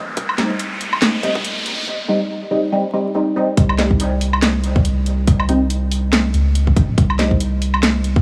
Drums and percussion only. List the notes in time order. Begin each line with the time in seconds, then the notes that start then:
0.17 kick, closed hi-hat
0.29 low woodblock
0.38 snare, closed hi-hat
0.50 kick
0.59 closed hi-hat
0.81 closed hi-hat
0.93 low woodblock
1.02 snare, closed hi-hat
1.23 closed hi-hat
1.35 kick
1.45 closed hi-hat
1.66 closed hi-hat
3.57 kick, closed hi-hat
3.69 low woodblock
3.79 snare, closed hi-hat
3.91 kick
4.00 closed hi-hat
4.21 open hi-hat
4.33 low woodblock
4.42 snare, closed hi-hat
4.64 closed hi-hat
4.76 kick
4.85 closed hi-hat
5.06 closed hi-hat
5.27 kick, closed hi-hat
5.40 low woodblock
5.49 closed hi-hat
5.70 closed hi-hat
5.91 open hi-hat
6.13 snare, closed hi-hat
6.34 closed hi-hat
6.55 closed hi-hat
6.67 kick
6.76 kick, closed hi-hat
6.98 kick, closed hi-hat
7.10 low woodblock
7.19 snare, closed hi-hat
7.31 kick
7.40 closed hi-hat
7.62 open hi-hat
7.74 low woodblock
7.83 snare, closed hi-hat
8.04 closed hi-hat
8.16 kick